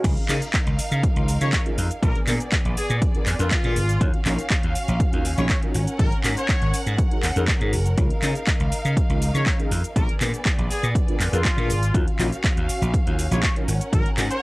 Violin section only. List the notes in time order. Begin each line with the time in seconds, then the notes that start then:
0.04 D#4 A#4 F5
2.03 B3 G#4 D5
4.01 C#4 F#4 F5
5.75 A#4 F#5
7.98 D#4 F5
9.96 B3 G#4 D5
11.94 C#4 F#4 F5
13.68 A#4 F#5